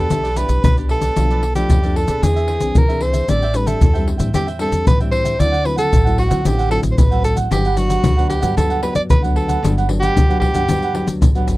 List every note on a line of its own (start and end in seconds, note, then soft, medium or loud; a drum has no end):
0.00 0.39 A4 loud
0.10 0.44 B1 medium
0.10 0.62 E3 soft
0.10 0.27 B3 soft
0.10 0.27 D4 soft
0.10 0.23 E4 medium
0.10 0.23 G4 medium
0.10 0.28 G4 medium
0.10 0.22 D5 medium
0.10 pandeiro medium
0.10 maracas medium
0.10 surdo medium
0.23 0.36 G4 medium
0.23 0.36 B4 medium
0.23 0.36 D5 medium
0.23 pandeiro soft
0.23 maracas soft
0.36 0.62 B3 medium
0.36 0.62 D4 medium
0.36 0.48 E4 medium
0.36 0.48 G4 medium
0.36 0.62 G4 medium
0.36 0.49 B4 medium
0.36 0.64 B4 medium
0.36 0.48 D5 medium
0.36 pandeiro medium
0.36 maracas medium
0.49 0.61 B1 medium
0.49 pandeiro medium
0.49 maracas medium
0.64 1.09 B1 medium
0.64 0.76 B4 medium
0.64 pandeiro medium
0.64 maracas medium
0.64 surdo loud
0.77 1.13 B3 medium
0.77 1.13 D4 medium
0.77 0.88 G4 medium
0.77 1.13 G4 medium
0.77 0.89 B4 medium
0.77 0.89 D5 medium
0.77 pandeiro soft
0.77 maracas soft
0.89 1.02 E4 medium
0.89 1.02 G4 soft
0.89 1.53 A4 medium
0.89 1.01 B4 soft
0.89 1.00 D5 medium
0.89 pandeiro medium
1.01 1.15 G4 medium
1.01 1.15 B4 medium
1.01 1.14 D5 medium
1.01 pandeiro medium
1.01 maracas medium
1.16 1.62 B1 medium
1.16 1.68 B2 medium
1.16 1.42 F3 medium
1.16 1.42 A3 medium
1.16 1.42 D4 medium
1.16 1.29 F4 medium
1.16 1.29 A4 soft
1.16 1.30 D5 medium
1.16 pandeiro medium
1.16 maracas medium
1.16 surdo medium
1.31 1.42 A4 medium
1.31 1.42 B4 medium
1.31 1.42 D5 medium
1.31 pandeiro soft
1.31 maracas soft
1.43 muted cavaquinho stroke soft
1.43 pandeiro medium
1.55 1.79 F3 medium
1.55 1.79 A3 medium
1.55 1.79 D4 medium
1.55 1.97 G4 medium
1.55 1.68 A4 medium
1.55 1.69 B4 medium
1.55 1.68 D5 medium
1.55 pandeiro medium
1.55 maracas medium
1.69 2.03 F2 medium
1.69 2.20 B2 soft
1.69 1.82 F4 soft
1.69 1.82 B4 soft
1.69 1.81 D5 medium
1.69 pandeiro medium
1.69 maracas medium
1.69 surdo medium
1.82 2.06 F3 medium
1.82 2.06 A3 medium
1.82 2.06 D4 medium
1.82 2.08 A4 medium
1.82 2.07 B4 medium
1.82 2.07 D5 medium
1.82 pandeiro soft
1.82 maracas soft
1.96 2.24 A4 medium
1.96 pandeiro medium
2.08 2.20 B2 medium
2.08 2.58 C4 medium
2.08 2.58 D4 medium
2.08 2.58 G#4 medium
2.08 2.21 A4 medium
2.08 2.21 B4 medium
2.08 2.21 D5 medium
2.08 pandeiro medium
2.08 maracas medium
2.22 2.56 E2 medium
2.22 2.73 E3 soft
2.22 2.35 D4 medium
2.22 2.79 G#4 loud
2.22 2.35 G#4 soft
2.22 2.35 C5 medium
2.22 2.35 E5 soft
2.22 pandeiro medium
2.22 maracas medium
2.22 surdo medium
2.36 2.47 G#4 medium
2.36 2.47 C5 medium
2.36 2.48 E5 medium
2.36 pandeiro soft
2.36 maracas soft
2.47 2.59 D4 medium
2.47 2.60 G#4 medium
2.47 2.60 C5 medium
2.47 2.59 E5 medium
2.47 pandeiro medium
2.60 2.73 C2 medium
2.60 2.84 C4 medium
2.60 2.84 D4 medium
2.60 2.84 G#4 medium
2.60 muted cavaquinho stroke soft
2.60 pandeiro medium
2.60 maracas medium
2.75 3.21 C2 medium
2.75 3.26 E3 medium
2.75 3.04 A#4 medium
2.75 pandeiro medium
2.75 maracas medium
2.75 surdo loud
2.88 3.24 C4 medium
2.88 3.25 D4 medium
2.88 3.00 G#4 medium
2.88 3.25 G#4 medium
2.88 3.01 C5 medium
2.88 3.01 E5 medium
2.88 pandeiro soft
2.88 maracas soft
3.01 3.13 D4 soft
3.01 3.14 G#4 soft
3.01 3.13 C5 soft
3.01 3.31 C5 medium
3.01 3.12 E5 medium
3.01 pandeiro medium
3.13 3.27 G#4 medium
3.13 3.27 C5 medium
3.13 3.26 E5 medium
3.13 pandeiro medium
3.13 maracas medium
3.28 3.73 A1 medium
3.28 3.79 A2 medium
3.28 3.44 G3 medium
3.28 3.44 C4 medium
3.28 3.44 D4 medium
3.28 3.40 A4 medium
3.28 3.41 C5 soft
3.28 3.57 D5 loud
3.28 3.41 E5 medium
3.28 3.41 G5 medium
3.28 pandeiro medium
3.28 maracas medium
3.28 surdo medium
3.42 3.54 C5 medium
3.42 3.54 E5 medium
3.42 3.54 G5 medium
3.42 pandeiro soft
3.42 maracas soft
3.54 3.90 G3 medium
3.54 3.90 C4 medium
3.54 3.90 D4 medium
3.54 3.69 B4 medium
3.54 muted cavaquinho stroke soft
3.54 pandeiro medium
3.54 maracas medium
3.66 4.07 A4 medium
3.66 3.80 C5 medium
3.66 3.80 E5 medium
3.66 3.79 G5 medium
3.66 pandeiro medium
3.66 maracas medium
3.81 4.15 E2 medium
3.81 4.32 E3 medium
3.81 3.94 A4 soft
3.81 3.94 C5 soft
3.81 3.94 E5 soft
3.81 3.92 G5 soft
3.81 pandeiro medium
3.81 maracas medium
3.81 surdo loud
3.94 4.17 G3 medium
3.94 4.18 C4 medium
3.94 4.18 D4 medium
3.94 4.18 C5 medium
3.94 4.18 E5 medium
3.94 4.17 G5 medium
3.94 pandeiro soft
3.94 maracas soft
4.08 pandeiro medium
4.18 4.31 A2 medium
4.18 4.29 G3 medium
4.18 4.30 C4 medium
4.18 4.30 D4 medium
4.18 4.32 C5 medium
4.18 4.32 E5 medium
4.18 4.32 G5 medium
4.18 pandeiro medium
4.18 maracas medium
4.33 4.68 E2 medium
4.33 4.84 A2 soft
4.33 4.50 G3 medium
4.33 4.50 C4 soft
4.33 4.50 D4 medium
4.33 4.47 G4 medium
4.33 4.46 A4 soft
4.33 4.46 C5 soft
4.33 4.46 E5 medium
4.33 4.45 G5 medium
4.33 pandeiro medium
4.33 maracas medium
4.33 surdo medium
4.47 4.59 C5 medium
4.47 4.59 E5 medium
4.47 4.59 G5 medium
4.47 pandeiro soft
4.47 maracas soft
4.59 4.96 G3 medium
4.59 4.96 C4 medium
4.59 4.96 D4 medium
4.59 4.71 A4 medium
4.59 4.85 A4 medium
4.59 4.71 C5 medium
4.59 4.71 E5 medium
4.59 4.71 G5 medium
4.59 pandeiro medium
4.72 4.84 E2 medium
4.72 pandeiro medium
4.72 maracas medium
4.87 5.32 A1 medium
4.87 5.37 E3 medium
4.87 4.99 B4 medium
4.87 pandeiro medium
4.87 maracas medium
4.87 surdo loud
5.00 5.36 G3 medium
5.00 5.36 C4 medium
5.00 5.36 D4 medium
5.00 5.12 C5 medium
5.00 5.12 E5 medium
5.00 5.12 G5 medium
5.00 pandeiro soft
5.00 maracas soft
5.11 5.25 A4 soft
5.11 5.41 C5 loud
5.11 5.24 E5 soft
5.11 5.23 G5 medium
5.11 pandeiro medium
5.24 5.38 C5 medium
5.24 5.38 E5 medium
5.24 5.38 G5 medium
5.24 pandeiro medium
5.24 maracas medium
5.39 5.85 D2 medium
5.39 5.90 D3 medium
5.39 5.55 F#3 soft
5.39 5.55 C4 medium
5.39 5.51 D4 soft
5.39 5.56 E4 medium
5.39 5.51 A4 soft
5.39 5.51 C5 medium
5.39 5.67 D5 loud
5.39 5.50 F#5 medium
5.39 pandeiro medium
5.39 maracas medium
5.39 surdo medium
5.51 5.62 A4 medium
5.51 5.63 C5 medium
5.51 5.63 F#5 medium
5.51 pandeiro soft
5.51 maracas soft
5.65 5.90 F#3 medium
5.65 5.90 C4 medium
5.65 5.90 E4 medium
5.65 5.78 B4 medium
5.65 pandeiro medium
5.76 5.90 A4 medium
5.76 6.16 A4 loud
5.76 5.90 C5 medium
5.76 5.90 F#5 medium
5.76 pandeiro medium
5.76 maracas medium
5.91 6.26 A1 medium
5.91 6.43 A2 medium
5.91 6.04 D4 soft
5.91 6.04 A4 soft
5.91 pandeiro medium
5.91 maracas medium
5.91 surdo medium
6.04 6.28 F#3 medium
6.04 6.28 C4 medium
6.04 6.29 E4 medium
6.04 6.29 A4 medium
6.04 6.29 C5 medium
6.04 6.27 F#5 medium
6.04 pandeiro soft
6.04 maracas soft
6.18 6.48 F#4 medium
6.18 pandeiro medium
6.29 6.43 D3 medium
6.29 6.40 F#3 medium
6.29 6.40 C4 medium
6.29 6.41 E4 medium
6.29 6.44 A4 medium
6.29 6.43 C5 medium
6.29 6.43 F#5 medium
6.29 pandeiro medium
6.29 maracas medium
6.44 6.79 A1 medium
6.44 6.95 D3 soft
6.44 6.61 F#3 soft
6.44 6.61 C4 medium
6.44 6.57 D4 soft
6.44 6.61 E4 medium
6.44 6.71 G4 medium
6.44 6.57 A4 medium
6.44 6.57 C5 medium
6.44 6.57 F#5 medium
6.44 pandeiro medium
6.44 maracas medium
6.44 surdo medium
6.58 6.68 A4 medium
6.58 6.69 C5 medium
6.58 6.69 F#5 medium
6.58 pandeiro soft
6.58 maracas soft
6.69 6.96 F#3 medium
6.69 6.96 C4 medium
6.69 6.80 D4 medium
6.69 6.96 E4 medium
6.69 6.80 A4 medium
6.69 6.80 C5 medium
6.69 6.81 F#5 medium
6.69 pandeiro medium
6.81 6.95 A1 medium
6.81 muted cavaquinho stroke soft
6.81 pandeiro medium
6.81 maracas medium
6.91 6.99 C5 medium
6.97 7.43 A1 medium
6.97 7.48 A2 medium
6.97 7.24 B4 medium
6.97 pandeiro medium
6.97 maracas medium
6.97 surdo loud
7.11 7.47 F#3 medium
7.11 7.47 C4 soft
7.11 7.48 E4 medium
7.11 7.22 A4 medium
7.11 7.23 C5 medium
7.11 7.23 F#5 medium
7.11 pandeiro soft
7.11 maracas soft
7.23 7.36 D4 soft
7.23 7.36 A4 soft
7.23 7.36 A4 medium
7.23 7.35 C5 medium
7.23 7.35 F#5 medium
7.23 pandeiro medium
7.23 maracas medium
7.36 7.49 A4 medium
7.36 7.49 C5 medium
7.36 7.49 F#5 medium
7.36 pandeiro medium
7.36 maracas medium
7.50 7.96 G1 medium
7.50 8.01 G2 medium
7.50 7.67 F#3 medium
7.50 7.67 B3 medium
7.50 7.63 D4 soft
7.50 7.67 D4 medium
7.50 7.64 G4 medium
7.50 7.80 G4 medium
7.50 7.64 B4 medium
7.50 pandeiro medium
7.50 maracas medium
7.50 surdo medium
7.65 7.75 G4 medium
7.65 7.76 B4 medium
7.65 7.76 F#5 medium
7.65 pandeiro soft
7.65 maracas soft
7.76 8.13 F#3 medium
7.76 8.13 B3 medium
7.76 8.13 D4 medium
7.76 8.29 F#4 medium
7.76 muted cavaquinho stroke soft
7.76 pandeiro medium
7.76 maracas medium
7.88 8.02 G4 medium
7.88 8.02 B4 medium
7.88 8.02 F#5 medium
7.88 pandeiro medium
7.88 maracas medium
8.04 8.38 D2 medium
8.04 8.54 D3 medium
8.04 8.16 D4 soft
8.04 8.16 G4 soft
8.04 8.17 B4 soft
8.04 8.16 F#5 medium
8.04 pandeiro medium
8.04 maracas medium
8.04 surdo medium
8.17 8.40 F#3 medium
8.17 8.40 B3 medium
8.17 8.40 D4 medium
8.17 8.41 G4 medium
8.17 8.41 B4 medium
8.17 8.40 F#5 medium
8.17 pandeiro soft
8.17 maracas soft
8.29 8.54 G4 medium
8.29 pandeiro medium
8.29 maracas medium
8.41 8.54 G2 medium
8.41 8.52 F#3 medium
8.41 8.52 B3 medium
8.41 8.53 D4 medium
8.41 8.55 G4 medium
8.41 8.55 B4 medium
8.41 8.54 F#5 medium
8.41 pandeiro medium
8.41 maracas medium
8.56 8.90 D2 medium
8.56 9.07 G2 medium
8.56 8.79 F#3 soft
8.56 8.80 B3 soft
8.56 8.69 D4 soft
8.56 8.80 D4 medium
8.56 8.69 G4 medium
8.56 8.81 A4 medium
8.56 8.69 B4 medium
8.56 8.68 F#5 medium
8.56 pandeiro medium
8.56 maracas medium
8.56 surdo medium
8.70 8.82 G4 medium
8.70 8.82 B4 medium
8.70 8.82 F#5 medium
8.70 pandeiro soft
8.70 maracas soft
8.82 9.19 F#3 medium
8.82 9.19 B3 medium
8.82 8.94 D4 medium
8.82 9.19 D4 medium
8.82 8.94 G4 medium
8.82 8.95 B4 medium
8.82 8.94 B4 medium
8.82 8.94 F#5 medium
8.82 pandeiro medium
8.95 9.07 D2 medium
8.95 9.02 D5 loud
8.95 muted cavaquinho stroke soft
8.95 pandeiro medium
8.95 maracas medium
9.09 9.55 D2 medium
9.09 9.60 D3 medium
9.09 9.22 B4 medium
9.09 pandeiro medium
9.09 maracas medium
9.09 surdo loud
9.22 9.59 F#3 medium
9.22 9.59 B3 medium
9.22 9.59 D4 medium
9.22 9.35 G4 medium
9.22 9.35 B4 medium
9.22 9.35 F#5 medium
9.22 pandeiro soft
9.22 maracas soft
9.36 9.48 D4 soft
9.36 9.48 G4 soft
9.36 9.73 A4 medium
9.36 9.48 B4 soft
9.36 pandeiro medium
9.48 9.62 G4 medium
9.48 9.61 B4 medium
9.48 9.61 F#5 medium
9.48 pandeiro medium
9.48 maracas medium
9.62 10.08 G1 loud
9.62 10.13 G2 medium
9.62 9.85 F#3 medium
9.62 9.85 B3 soft
9.62 9.74 D4 soft
9.62 9.85 D4 medium
9.62 9.75 G4 medium
9.62 9.75 B4 medium
9.62 9.75 F#5 medium
9.62 pandeiro medium
9.62 maracas medium
9.62 surdo medium
9.77 9.88 G4 medium
9.77 9.88 B4 medium
9.77 9.88 F#5 medium
9.77 pandeiro soft
9.77 maracas soft
9.88 10.24 F#3 medium
9.88 10.24 B3 medium
9.88 10.25 D4 medium
9.88 muted cavaquinho stroke soft
9.88 pandeiro medium
10.00 10.38 G4 loud
10.00 10.14 G4 medium
10.00 10.14 B4 medium
10.00 10.14 F#5 medium
10.00 pandeiro medium
10.00 maracas medium
10.15 10.49 D2 medium
10.15 10.66 D3 medium
10.15 10.27 D4 soft
10.15 10.28 B4 soft
10.15 pandeiro medium
10.15 maracas medium
10.15 surdo medium
10.29 10.51 F#3 medium
10.29 10.51 B3 medium
10.29 10.51 D4 medium
10.29 10.55 G4 medium
10.29 10.54 B4 medium
10.29 10.53 F#5 medium
10.29 pandeiro soft
10.29 maracas soft
10.40 11.16 G4 loud
10.40 pandeiro medium
10.40 surdo medium
10.54 10.65 G2 medium
10.54 10.63 F#3 medium
10.54 10.63 B3 medium
10.54 10.64 D4 medium
10.54 10.68 G4 medium
10.54 10.67 B4 medium
10.54 10.67 F#5 medium
10.54 pandeiro medium
10.54 maracas medium
10.68 11.02 D2 medium
10.68 11.18 G2 medium
10.68 10.90 F#3 soft
10.68 10.90 B3 soft
10.68 10.91 D4 medium
10.68 10.81 D4 medium
10.68 10.81 G4 soft
10.68 10.81 B4 medium
10.68 10.82 F#5 medium
10.68 pandeiro medium
10.68 maracas medium
10.68 surdo medium
10.82 10.94 G4 medium
10.82 10.95 B4 medium
10.82 10.94 F#5 medium
10.82 pandeiro soft
10.82 maracas soft
10.93 11.29 F#3 medium
10.93 11.30 B3 medium
10.93 11.30 D4 medium
10.93 11.06 D4 medium
10.93 11.06 G4 medium
10.93 11.07 B4 medium
10.93 11.08 F#5 medium
10.93 pandeiro medium
11.07 11.19 D2 medium
11.07 muted cavaquinho stroke soft
11.07 pandeiro medium
11.07 maracas medium
11.21 11.45 A1 medium
11.21 11.57 D3 medium
11.21 pandeiro medium
11.21 maracas medium
11.21 surdo loud
11.35 11.57 F#3 medium
11.35 11.57 B3 medium
11.35 11.57 D4 medium
11.35 11.47 G4 medium
11.35 11.47 B4 medium
11.35 11.47 F#5 medium
11.35 pandeiro soft
11.35 maracas soft
11.47 11.57 G1 medium
11.47 11.57 D4 soft
11.47 11.57 G4 soft
11.47 11.57 B4 medium
11.47 11.57 F#5 soft
11.47 pandeiro medium
11.47 maracas medium